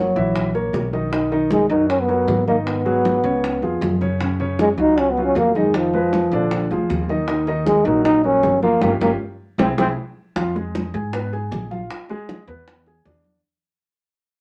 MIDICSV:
0, 0, Header, 1, 5, 480
1, 0, Start_track
1, 0, Tempo, 385109
1, 1401, Time_signature, 4, 2, 24, 8
1, 17949, End_track
2, 0, Start_track
2, 0, Title_t, "Grand piano"
2, 0, Program_c, 0, 0
2, 198, Note_on_c, 0, 52, 80
2, 200, Note_on_c, 0, 64, 78
2, 204, Note_on_c, 0, 76, 78
2, 592, Note_off_c, 0, 52, 0
2, 594, Note_off_c, 0, 64, 0
2, 596, Note_off_c, 0, 76, 0
2, 679, Note_on_c, 0, 58, 71
2, 679, Note_on_c, 0, 70, 73
2, 683, Note_on_c, 0, 73, 71
2, 1073, Note_off_c, 0, 58, 0
2, 1073, Note_off_c, 0, 70, 0
2, 1076, Note_off_c, 0, 73, 0
2, 1160, Note_on_c, 0, 51, 83
2, 1165, Note_on_c, 0, 63, 74
2, 1169, Note_on_c, 0, 75, 74
2, 1357, Note_off_c, 0, 51, 0
2, 1360, Note_off_c, 0, 63, 0
2, 1362, Note_off_c, 0, 75, 0
2, 1396, Note_on_c, 0, 51, 74
2, 1402, Note_on_c, 0, 63, 75
2, 1406, Note_on_c, 0, 75, 74
2, 1595, Note_off_c, 0, 51, 0
2, 1599, Note_off_c, 0, 63, 0
2, 1600, Note_off_c, 0, 75, 0
2, 1639, Note_on_c, 0, 51, 91
2, 1646, Note_on_c, 0, 63, 87
2, 1650, Note_on_c, 0, 75, 81
2, 2033, Note_off_c, 0, 51, 0
2, 2037, Note_off_c, 0, 63, 0
2, 2040, Note_off_c, 0, 75, 0
2, 2123, Note_on_c, 0, 54, 75
2, 2129, Note_on_c, 0, 70, 69
2, 2131, Note_on_c, 0, 66, 71
2, 2516, Note_off_c, 0, 54, 0
2, 2519, Note_off_c, 0, 70, 0
2, 2520, Note_off_c, 0, 66, 0
2, 2596, Note_on_c, 0, 54, 78
2, 2597, Note_on_c, 0, 66, 69
2, 2603, Note_on_c, 0, 70, 73
2, 2991, Note_off_c, 0, 54, 0
2, 2992, Note_off_c, 0, 66, 0
2, 2996, Note_off_c, 0, 70, 0
2, 3083, Note_on_c, 0, 51, 79
2, 3092, Note_on_c, 0, 63, 79
2, 3096, Note_on_c, 0, 75, 81
2, 3476, Note_off_c, 0, 51, 0
2, 3481, Note_off_c, 0, 63, 0
2, 3483, Note_off_c, 0, 75, 0
2, 3556, Note_on_c, 0, 54, 79
2, 3559, Note_on_c, 0, 66, 80
2, 3560, Note_on_c, 0, 68, 74
2, 3951, Note_off_c, 0, 54, 0
2, 3953, Note_off_c, 0, 66, 0
2, 3954, Note_off_c, 0, 68, 0
2, 4037, Note_on_c, 0, 49, 78
2, 4041, Note_on_c, 0, 61, 77
2, 4042, Note_on_c, 0, 73, 82
2, 4432, Note_off_c, 0, 49, 0
2, 4434, Note_off_c, 0, 61, 0
2, 4435, Note_off_c, 0, 73, 0
2, 4523, Note_on_c, 0, 53, 65
2, 4525, Note_on_c, 0, 65, 68
2, 4525, Note_on_c, 0, 68, 74
2, 4916, Note_off_c, 0, 53, 0
2, 4917, Note_off_c, 0, 65, 0
2, 4917, Note_off_c, 0, 68, 0
2, 4999, Note_on_c, 0, 49, 85
2, 5004, Note_on_c, 0, 61, 79
2, 5008, Note_on_c, 0, 73, 80
2, 5196, Note_off_c, 0, 49, 0
2, 5199, Note_off_c, 0, 61, 0
2, 5201, Note_off_c, 0, 73, 0
2, 5245, Note_on_c, 0, 49, 74
2, 5249, Note_on_c, 0, 61, 79
2, 5256, Note_on_c, 0, 73, 72
2, 5440, Note_off_c, 0, 49, 0
2, 5442, Note_off_c, 0, 61, 0
2, 5446, Note_off_c, 0, 73, 0
2, 5484, Note_on_c, 0, 49, 86
2, 5488, Note_on_c, 0, 61, 86
2, 5490, Note_on_c, 0, 73, 88
2, 5876, Note_off_c, 0, 49, 0
2, 5878, Note_off_c, 0, 61, 0
2, 5879, Note_off_c, 0, 73, 0
2, 5963, Note_on_c, 0, 54, 66
2, 5966, Note_on_c, 0, 65, 74
2, 5970, Note_on_c, 0, 66, 68
2, 6355, Note_off_c, 0, 54, 0
2, 6357, Note_off_c, 0, 65, 0
2, 6359, Note_off_c, 0, 66, 0
2, 6449, Note_on_c, 0, 54, 73
2, 6457, Note_on_c, 0, 65, 74
2, 6458, Note_on_c, 0, 66, 70
2, 6839, Note_off_c, 0, 54, 0
2, 6843, Note_off_c, 0, 65, 0
2, 6844, Note_off_c, 0, 66, 0
2, 6927, Note_on_c, 0, 51, 80
2, 6930, Note_on_c, 0, 63, 84
2, 6933, Note_on_c, 0, 75, 86
2, 7317, Note_off_c, 0, 51, 0
2, 7319, Note_off_c, 0, 63, 0
2, 7321, Note_off_c, 0, 75, 0
2, 7402, Note_on_c, 0, 56, 81
2, 7408, Note_on_c, 0, 68, 69
2, 7410, Note_on_c, 0, 71, 77
2, 7794, Note_off_c, 0, 56, 0
2, 7798, Note_off_c, 0, 68, 0
2, 7799, Note_off_c, 0, 71, 0
2, 7887, Note_on_c, 0, 50, 86
2, 7889, Note_on_c, 0, 62, 83
2, 7894, Note_on_c, 0, 74, 86
2, 8277, Note_off_c, 0, 50, 0
2, 8278, Note_off_c, 0, 62, 0
2, 8281, Note_off_c, 0, 74, 0
2, 8366, Note_on_c, 0, 53, 80
2, 8369, Note_on_c, 0, 65, 74
2, 8373, Note_on_c, 0, 68, 70
2, 8756, Note_off_c, 0, 53, 0
2, 8758, Note_off_c, 0, 65, 0
2, 8760, Note_off_c, 0, 68, 0
2, 8841, Note_on_c, 0, 51, 79
2, 8846, Note_on_c, 0, 63, 80
2, 8851, Note_on_c, 0, 75, 83
2, 9036, Note_off_c, 0, 51, 0
2, 9040, Note_off_c, 0, 63, 0
2, 9042, Note_off_c, 0, 75, 0
2, 9077, Note_on_c, 0, 63, 78
2, 9078, Note_on_c, 0, 51, 72
2, 9083, Note_on_c, 0, 75, 75
2, 9274, Note_off_c, 0, 63, 0
2, 9275, Note_off_c, 0, 51, 0
2, 9278, Note_off_c, 0, 75, 0
2, 9320, Note_on_c, 0, 51, 88
2, 9324, Note_on_c, 0, 63, 83
2, 9325, Note_on_c, 0, 75, 89
2, 9712, Note_off_c, 0, 51, 0
2, 9715, Note_off_c, 0, 63, 0
2, 9715, Note_off_c, 0, 75, 0
2, 9798, Note_on_c, 0, 54, 74
2, 9798, Note_on_c, 0, 66, 74
2, 9806, Note_on_c, 0, 70, 78
2, 10191, Note_off_c, 0, 54, 0
2, 10191, Note_off_c, 0, 66, 0
2, 10196, Note_off_c, 0, 70, 0
2, 10274, Note_on_c, 0, 54, 72
2, 10276, Note_on_c, 0, 66, 71
2, 10279, Note_on_c, 0, 70, 72
2, 10669, Note_off_c, 0, 54, 0
2, 10669, Note_off_c, 0, 66, 0
2, 10671, Note_off_c, 0, 70, 0
2, 10751, Note_on_c, 0, 53, 89
2, 10754, Note_on_c, 0, 65, 83
2, 10756, Note_on_c, 0, 77, 76
2, 10950, Note_off_c, 0, 53, 0
2, 10952, Note_off_c, 0, 65, 0
2, 10953, Note_off_c, 0, 77, 0
2, 10988, Note_on_c, 0, 61, 86
2, 10990, Note_on_c, 0, 65, 91
2, 10993, Note_on_c, 0, 67, 89
2, 11145, Note_off_c, 0, 61, 0
2, 11146, Note_off_c, 0, 65, 0
2, 11148, Note_off_c, 0, 67, 0
2, 11233, Note_on_c, 0, 67, 93
2, 11235, Note_on_c, 0, 65, 90
2, 11236, Note_on_c, 0, 61, 90
2, 11388, Note_off_c, 0, 67, 0
2, 11389, Note_off_c, 0, 65, 0
2, 11390, Note_off_c, 0, 61, 0
2, 11946, Note_on_c, 0, 64, 88
2, 11951, Note_on_c, 0, 60, 103
2, 11952, Note_on_c, 0, 68, 95
2, 12104, Note_off_c, 0, 64, 0
2, 12106, Note_off_c, 0, 60, 0
2, 12107, Note_off_c, 0, 68, 0
2, 12188, Note_on_c, 0, 60, 87
2, 12190, Note_on_c, 0, 64, 92
2, 12191, Note_on_c, 0, 68, 94
2, 12344, Note_off_c, 0, 60, 0
2, 12346, Note_off_c, 0, 64, 0
2, 12346, Note_off_c, 0, 68, 0
2, 12918, Note_on_c, 0, 53, 69
2, 12919, Note_on_c, 0, 65, 78
2, 13113, Note_off_c, 0, 53, 0
2, 13114, Note_off_c, 0, 65, 0
2, 13152, Note_on_c, 0, 56, 72
2, 13156, Note_on_c, 0, 68, 72
2, 13547, Note_off_c, 0, 56, 0
2, 13549, Note_off_c, 0, 68, 0
2, 13639, Note_on_c, 0, 68, 69
2, 13642, Note_on_c, 0, 80, 67
2, 13834, Note_off_c, 0, 68, 0
2, 13836, Note_off_c, 0, 80, 0
2, 13875, Note_on_c, 0, 59, 72
2, 13880, Note_on_c, 0, 71, 74
2, 14072, Note_off_c, 0, 59, 0
2, 14075, Note_off_c, 0, 71, 0
2, 14118, Note_on_c, 0, 68, 73
2, 14126, Note_on_c, 0, 80, 73
2, 14510, Note_off_c, 0, 68, 0
2, 14515, Note_off_c, 0, 80, 0
2, 14593, Note_on_c, 0, 65, 71
2, 14598, Note_on_c, 0, 77, 67
2, 14987, Note_off_c, 0, 65, 0
2, 14990, Note_off_c, 0, 77, 0
2, 15082, Note_on_c, 0, 56, 85
2, 15087, Note_on_c, 0, 68, 89
2, 15472, Note_off_c, 0, 56, 0
2, 15476, Note_off_c, 0, 68, 0
2, 15554, Note_on_c, 0, 59, 72
2, 15556, Note_on_c, 0, 71, 70
2, 15948, Note_off_c, 0, 59, 0
2, 15949, Note_off_c, 0, 71, 0
2, 16042, Note_on_c, 0, 68, 69
2, 16050, Note_on_c, 0, 80, 68
2, 16236, Note_off_c, 0, 68, 0
2, 16241, Note_off_c, 0, 80, 0
2, 16275, Note_on_c, 0, 62, 74
2, 16277, Note_on_c, 0, 74, 67
2, 16669, Note_off_c, 0, 62, 0
2, 16670, Note_off_c, 0, 74, 0
2, 17949, End_track
3, 0, Start_track
3, 0, Title_t, "Trombone"
3, 0, Program_c, 1, 57
3, 0, Note_on_c, 1, 54, 85
3, 873, Note_off_c, 1, 54, 0
3, 1892, Note_on_c, 1, 56, 98
3, 2110, Note_off_c, 1, 56, 0
3, 2118, Note_on_c, 1, 63, 90
3, 2342, Note_off_c, 1, 63, 0
3, 2356, Note_on_c, 1, 61, 90
3, 2509, Note_on_c, 1, 59, 99
3, 2528, Note_off_c, 1, 61, 0
3, 3075, Note_off_c, 1, 59, 0
3, 3084, Note_on_c, 1, 58, 91
3, 3192, Note_off_c, 1, 58, 0
3, 3314, Note_on_c, 1, 59, 92
3, 4947, Note_off_c, 1, 59, 0
3, 5739, Note_on_c, 1, 56, 93
3, 5843, Note_off_c, 1, 56, 0
3, 5984, Note_on_c, 1, 63, 102
3, 6217, Note_on_c, 1, 61, 104
3, 6236, Note_off_c, 1, 63, 0
3, 6365, Note_on_c, 1, 59, 90
3, 6384, Note_off_c, 1, 61, 0
3, 6522, Note_off_c, 1, 59, 0
3, 6533, Note_on_c, 1, 61, 90
3, 6675, Note_off_c, 1, 61, 0
3, 6694, Note_on_c, 1, 58, 90
3, 6943, Note_on_c, 1, 56, 87
3, 6962, Note_off_c, 1, 58, 0
3, 7178, Note_on_c, 1, 53, 88
3, 7197, Note_off_c, 1, 56, 0
3, 8608, Note_off_c, 1, 53, 0
3, 9546, Note_on_c, 1, 56, 102
3, 9785, Note_on_c, 1, 63, 90
3, 9804, Note_off_c, 1, 56, 0
3, 10025, Note_off_c, 1, 63, 0
3, 10033, Note_on_c, 1, 63, 105
3, 10258, Note_off_c, 1, 63, 0
3, 10281, Note_on_c, 1, 61, 104
3, 10725, Note_off_c, 1, 61, 0
3, 10754, Note_on_c, 1, 58, 98
3, 10978, Note_off_c, 1, 58, 0
3, 11008, Note_on_c, 1, 58, 88
3, 11120, Note_off_c, 1, 58, 0
3, 11239, Note_on_c, 1, 58, 95
3, 11353, Note_off_c, 1, 58, 0
3, 11966, Note_on_c, 1, 60, 88
3, 12078, Note_off_c, 1, 60, 0
3, 12208, Note_on_c, 1, 60, 94
3, 12320, Note_off_c, 1, 60, 0
3, 17949, End_track
4, 0, Start_track
4, 0, Title_t, "Upright bass"
4, 0, Program_c, 2, 32
4, 197, Note_on_c, 2, 34, 96
4, 869, Note_off_c, 2, 34, 0
4, 911, Note_on_c, 2, 35, 81
4, 2042, Note_off_c, 2, 35, 0
4, 2112, Note_on_c, 2, 42, 97
4, 2787, Note_off_c, 2, 42, 0
4, 2834, Note_on_c, 2, 44, 86
4, 3964, Note_off_c, 2, 44, 0
4, 4033, Note_on_c, 2, 37, 99
4, 4483, Note_off_c, 2, 37, 0
4, 4512, Note_on_c, 2, 41, 70
4, 4739, Note_off_c, 2, 41, 0
4, 4752, Note_on_c, 2, 42, 94
4, 5882, Note_off_c, 2, 42, 0
4, 5952, Note_on_c, 2, 37, 97
4, 6626, Note_off_c, 2, 37, 0
4, 6670, Note_on_c, 2, 41, 90
4, 7800, Note_off_c, 2, 41, 0
4, 7871, Note_on_c, 2, 34, 96
4, 8321, Note_off_c, 2, 34, 0
4, 8358, Note_on_c, 2, 38, 74
4, 8581, Note_off_c, 2, 38, 0
4, 8594, Note_on_c, 2, 39, 91
4, 9722, Note_off_c, 2, 39, 0
4, 9783, Note_on_c, 2, 34, 96
4, 10460, Note_off_c, 2, 34, 0
4, 10505, Note_on_c, 2, 31, 82
4, 10956, Note_off_c, 2, 31, 0
4, 10985, Note_on_c, 2, 31, 99
4, 11169, Note_off_c, 2, 31, 0
4, 11225, Note_on_c, 2, 31, 86
4, 11409, Note_off_c, 2, 31, 0
4, 11943, Note_on_c, 2, 36, 91
4, 12127, Note_off_c, 2, 36, 0
4, 12187, Note_on_c, 2, 36, 88
4, 12370, Note_off_c, 2, 36, 0
4, 12910, Note_on_c, 2, 41, 91
4, 13583, Note_off_c, 2, 41, 0
4, 13635, Note_on_c, 2, 44, 94
4, 14305, Note_off_c, 2, 44, 0
4, 14351, Note_on_c, 2, 34, 89
4, 14777, Note_off_c, 2, 34, 0
4, 15548, Note_on_c, 2, 40, 97
4, 16222, Note_off_c, 2, 40, 0
4, 16271, Note_on_c, 2, 40, 85
4, 16697, Note_off_c, 2, 40, 0
4, 17949, End_track
5, 0, Start_track
5, 0, Title_t, "Drums"
5, 208, Note_on_c, 9, 63, 34
5, 208, Note_on_c, 9, 64, 75
5, 333, Note_off_c, 9, 63, 0
5, 333, Note_off_c, 9, 64, 0
5, 443, Note_on_c, 9, 60, 71
5, 445, Note_on_c, 9, 63, 32
5, 445, Note_on_c, 9, 64, 64
5, 567, Note_off_c, 9, 60, 0
5, 570, Note_off_c, 9, 63, 0
5, 570, Note_off_c, 9, 64, 0
5, 682, Note_on_c, 9, 60, 33
5, 686, Note_on_c, 9, 63, 34
5, 807, Note_off_c, 9, 60, 0
5, 811, Note_off_c, 9, 63, 0
5, 923, Note_on_c, 9, 60, 33
5, 923, Note_on_c, 9, 61, 79
5, 1047, Note_off_c, 9, 60, 0
5, 1047, Note_off_c, 9, 61, 0
5, 1160, Note_on_c, 9, 60, 34
5, 1166, Note_on_c, 9, 63, 84
5, 1284, Note_off_c, 9, 60, 0
5, 1290, Note_off_c, 9, 63, 0
5, 1405, Note_on_c, 9, 60, 68
5, 1412, Note_on_c, 9, 63, 33
5, 1529, Note_off_c, 9, 60, 0
5, 1537, Note_off_c, 9, 63, 0
5, 1644, Note_on_c, 9, 60, 33
5, 1650, Note_on_c, 9, 63, 35
5, 1769, Note_off_c, 9, 60, 0
5, 1775, Note_off_c, 9, 63, 0
5, 1877, Note_on_c, 9, 60, 55
5, 1891, Note_on_c, 9, 63, 93
5, 2001, Note_off_c, 9, 60, 0
5, 2016, Note_off_c, 9, 63, 0
5, 2366, Note_on_c, 9, 60, 63
5, 2371, Note_on_c, 9, 63, 32
5, 2491, Note_off_c, 9, 60, 0
5, 2496, Note_off_c, 9, 63, 0
5, 2603, Note_on_c, 9, 60, 32
5, 2615, Note_on_c, 9, 63, 32
5, 2728, Note_off_c, 9, 60, 0
5, 2739, Note_off_c, 9, 63, 0
5, 2844, Note_on_c, 9, 60, 34
5, 2844, Note_on_c, 9, 61, 80
5, 2848, Note_on_c, 9, 63, 72
5, 2968, Note_off_c, 9, 60, 0
5, 2968, Note_off_c, 9, 61, 0
5, 2972, Note_off_c, 9, 63, 0
5, 3085, Note_on_c, 9, 60, 34
5, 3086, Note_on_c, 9, 63, 73
5, 3210, Note_off_c, 9, 60, 0
5, 3211, Note_off_c, 9, 63, 0
5, 3323, Note_on_c, 9, 63, 33
5, 3326, Note_on_c, 9, 60, 64
5, 3448, Note_off_c, 9, 63, 0
5, 3451, Note_off_c, 9, 60, 0
5, 3562, Note_on_c, 9, 63, 32
5, 3564, Note_on_c, 9, 60, 33
5, 3687, Note_off_c, 9, 63, 0
5, 3689, Note_off_c, 9, 60, 0
5, 3803, Note_on_c, 9, 63, 93
5, 3805, Note_on_c, 9, 60, 60
5, 3928, Note_off_c, 9, 63, 0
5, 3930, Note_off_c, 9, 60, 0
5, 4042, Note_on_c, 9, 63, 34
5, 4042, Note_on_c, 9, 64, 74
5, 4167, Note_off_c, 9, 63, 0
5, 4167, Note_off_c, 9, 64, 0
5, 4283, Note_on_c, 9, 63, 29
5, 4287, Note_on_c, 9, 60, 68
5, 4407, Note_off_c, 9, 63, 0
5, 4412, Note_off_c, 9, 60, 0
5, 4522, Note_on_c, 9, 60, 33
5, 4523, Note_on_c, 9, 63, 32
5, 4647, Note_off_c, 9, 60, 0
5, 4647, Note_off_c, 9, 63, 0
5, 4763, Note_on_c, 9, 60, 32
5, 4763, Note_on_c, 9, 61, 79
5, 4767, Note_on_c, 9, 63, 34
5, 4887, Note_off_c, 9, 60, 0
5, 4887, Note_off_c, 9, 61, 0
5, 4891, Note_off_c, 9, 63, 0
5, 4997, Note_on_c, 9, 63, 77
5, 5005, Note_on_c, 9, 60, 35
5, 5121, Note_off_c, 9, 63, 0
5, 5130, Note_off_c, 9, 60, 0
5, 5241, Note_on_c, 9, 63, 34
5, 5242, Note_on_c, 9, 60, 65
5, 5365, Note_off_c, 9, 63, 0
5, 5366, Note_off_c, 9, 60, 0
5, 5480, Note_on_c, 9, 60, 35
5, 5489, Note_on_c, 9, 63, 33
5, 5604, Note_off_c, 9, 60, 0
5, 5613, Note_off_c, 9, 63, 0
5, 5722, Note_on_c, 9, 63, 98
5, 5724, Note_on_c, 9, 60, 61
5, 5847, Note_off_c, 9, 63, 0
5, 5848, Note_off_c, 9, 60, 0
5, 6203, Note_on_c, 9, 60, 67
5, 6206, Note_on_c, 9, 63, 30
5, 6327, Note_off_c, 9, 60, 0
5, 6331, Note_off_c, 9, 63, 0
5, 6446, Note_on_c, 9, 60, 35
5, 6449, Note_on_c, 9, 63, 33
5, 6570, Note_off_c, 9, 60, 0
5, 6573, Note_off_c, 9, 63, 0
5, 6682, Note_on_c, 9, 60, 33
5, 6682, Note_on_c, 9, 61, 78
5, 6685, Note_on_c, 9, 63, 74
5, 6807, Note_off_c, 9, 60, 0
5, 6807, Note_off_c, 9, 61, 0
5, 6810, Note_off_c, 9, 63, 0
5, 6919, Note_on_c, 9, 60, 34
5, 6928, Note_on_c, 9, 63, 78
5, 7044, Note_off_c, 9, 60, 0
5, 7053, Note_off_c, 9, 63, 0
5, 7157, Note_on_c, 9, 60, 70
5, 7168, Note_on_c, 9, 63, 36
5, 7282, Note_off_c, 9, 60, 0
5, 7293, Note_off_c, 9, 63, 0
5, 7398, Note_on_c, 9, 60, 32
5, 7406, Note_on_c, 9, 63, 35
5, 7523, Note_off_c, 9, 60, 0
5, 7531, Note_off_c, 9, 63, 0
5, 7639, Note_on_c, 9, 60, 60
5, 7648, Note_on_c, 9, 63, 88
5, 7763, Note_off_c, 9, 60, 0
5, 7772, Note_off_c, 9, 63, 0
5, 7890, Note_on_c, 9, 63, 33
5, 7890, Note_on_c, 9, 64, 86
5, 8014, Note_off_c, 9, 63, 0
5, 8014, Note_off_c, 9, 64, 0
5, 8118, Note_on_c, 9, 60, 68
5, 8130, Note_on_c, 9, 63, 30
5, 8130, Note_on_c, 9, 64, 69
5, 8242, Note_off_c, 9, 60, 0
5, 8255, Note_off_c, 9, 63, 0
5, 8255, Note_off_c, 9, 64, 0
5, 8367, Note_on_c, 9, 60, 34
5, 8369, Note_on_c, 9, 63, 33
5, 8491, Note_off_c, 9, 60, 0
5, 8493, Note_off_c, 9, 63, 0
5, 8602, Note_on_c, 9, 60, 32
5, 8602, Note_on_c, 9, 61, 75
5, 8726, Note_off_c, 9, 60, 0
5, 8726, Note_off_c, 9, 61, 0
5, 8842, Note_on_c, 9, 60, 35
5, 8847, Note_on_c, 9, 63, 71
5, 8966, Note_off_c, 9, 60, 0
5, 8971, Note_off_c, 9, 63, 0
5, 9071, Note_on_c, 9, 60, 67
5, 9196, Note_off_c, 9, 60, 0
5, 9313, Note_on_c, 9, 60, 37
5, 9323, Note_on_c, 9, 63, 33
5, 9438, Note_off_c, 9, 60, 0
5, 9448, Note_off_c, 9, 63, 0
5, 9553, Note_on_c, 9, 60, 60
5, 9564, Note_on_c, 9, 63, 91
5, 9678, Note_off_c, 9, 60, 0
5, 9689, Note_off_c, 9, 63, 0
5, 10036, Note_on_c, 9, 60, 71
5, 10039, Note_on_c, 9, 63, 30
5, 10160, Note_off_c, 9, 60, 0
5, 10163, Note_off_c, 9, 63, 0
5, 10270, Note_on_c, 9, 60, 31
5, 10278, Note_on_c, 9, 63, 31
5, 10395, Note_off_c, 9, 60, 0
5, 10402, Note_off_c, 9, 63, 0
5, 10511, Note_on_c, 9, 60, 33
5, 10511, Note_on_c, 9, 61, 85
5, 10519, Note_on_c, 9, 63, 76
5, 10636, Note_off_c, 9, 60, 0
5, 10636, Note_off_c, 9, 61, 0
5, 10643, Note_off_c, 9, 63, 0
5, 10750, Note_on_c, 9, 63, 69
5, 10752, Note_on_c, 9, 60, 36
5, 10874, Note_off_c, 9, 63, 0
5, 10876, Note_off_c, 9, 60, 0
5, 10987, Note_on_c, 9, 60, 99
5, 10991, Note_on_c, 9, 63, 92
5, 11112, Note_off_c, 9, 60, 0
5, 11116, Note_off_c, 9, 63, 0
5, 11235, Note_on_c, 9, 60, 91
5, 11240, Note_on_c, 9, 63, 89
5, 11359, Note_off_c, 9, 60, 0
5, 11364, Note_off_c, 9, 63, 0
5, 11957, Note_on_c, 9, 60, 100
5, 11960, Note_on_c, 9, 63, 86
5, 12081, Note_off_c, 9, 60, 0
5, 12084, Note_off_c, 9, 63, 0
5, 12192, Note_on_c, 9, 60, 94
5, 12199, Note_on_c, 9, 63, 97
5, 12316, Note_off_c, 9, 60, 0
5, 12323, Note_off_c, 9, 63, 0
5, 12914, Note_on_c, 9, 60, 69
5, 12920, Note_on_c, 9, 63, 36
5, 13039, Note_off_c, 9, 60, 0
5, 13045, Note_off_c, 9, 63, 0
5, 13162, Note_on_c, 9, 60, 34
5, 13164, Note_on_c, 9, 63, 33
5, 13286, Note_off_c, 9, 60, 0
5, 13289, Note_off_c, 9, 63, 0
5, 13399, Note_on_c, 9, 60, 55
5, 13405, Note_on_c, 9, 63, 92
5, 13524, Note_off_c, 9, 60, 0
5, 13529, Note_off_c, 9, 63, 0
5, 13875, Note_on_c, 9, 60, 70
5, 13890, Note_on_c, 9, 63, 28
5, 14000, Note_off_c, 9, 60, 0
5, 14015, Note_off_c, 9, 63, 0
5, 14123, Note_on_c, 9, 60, 33
5, 14126, Note_on_c, 9, 63, 35
5, 14248, Note_off_c, 9, 60, 0
5, 14251, Note_off_c, 9, 63, 0
5, 14359, Note_on_c, 9, 60, 32
5, 14359, Note_on_c, 9, 61, 76
5, 14364, Note_on_c, 9, 63, 72
5, 14483, Note_off_c, 9, 60, 0
5, 14483, Note_off_c, 9, 61, 0
5, 14488, Note_off_c, 9, 63, 0
5, 14599, Note_on_c, 9, 60, 33
5, 14599, Note_on_c, 9, 63, 78
5, 14724, Note_off_c, 9, 60, 0
5, 14724, Note_off_c, 9, 63, 0
5, 14839, Note_on_c, 9, 60, 70
5, 14849, Note_on_c, 9, 63, 35
5, 14963, Note_off_c, 9, 60, 0
5, 14974, Note_off_c, 9, 63, 0
5, 15073, Note_on_c, 9, 60, 30
5, 15086, Note_on_c, 9, 63, 32
5, 15198, Note_off_c, 9, 60, 0
5, 15211, Note_off_c, 9, 63, 0
5, 15318, Note_on_c, 9, 60, 55
5, 15324, Note_on_c, 9, 63, 84
5, 15442, Note_off_c, 9, 60, 0
5, 15449, Note_off_c, 9, 63, 0
5, 15800, Note_on_c, 9, 60, 66
5, 15807, Note_on_c, 9, 63, 28
5, 15925, Note_off_c, 9, 60, 0
5, 15931, Note_off_c, 9, 63, 0
5, 16034, Note_on_c, 9, 60, 31
5, 16042, Note_on_c, 9, 63, 29
5, 16158, Note_off_c, 9, 60, 0
5, 16166, Note_off_c, 9, 63, 0
5, 16271, Note_on_c, 9, 60, 32
5, 16271, Note_on_c, 9, 61, 78
5, 16280, Note_on_c, 9, 63, 33
5, 16396, Note_off_c, 9, 60, 0
5, 16396, Note_off_c, 9, 61, 0
5, 16405, Note_off_c, 9, 63, 0
5, 16509, Note_on_c, 9, 60, 34
5, 16518, Note_on_c, 9, 63, 77
5, 16633, Note_off_c, 9, 60, 0
5, 16643, Note_off_c, 9, 63, 0
5, 17949, End_track
0, 0, End_of_file